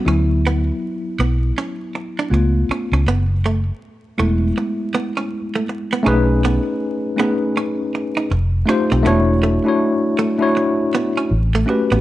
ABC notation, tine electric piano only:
X:1
M:4/4
L:1/16
Q:"Swing 16ths" 1/4=80
K:Bdor
V:1 name="Tine electric piano"
[F,B,E]6 z6 [A,B,^E]4 | z6 [G,A,B,E]6 z4 | [A,C^DGB]4- [A,CDGB] z [A,CDGB]6 z2 [A,_E=F=G=c]2 | [A,DEFc]2 z [A,DEFc]3 z [A,DEFc]4- [A,DEFc] z2 [A,CF=GB]2 |]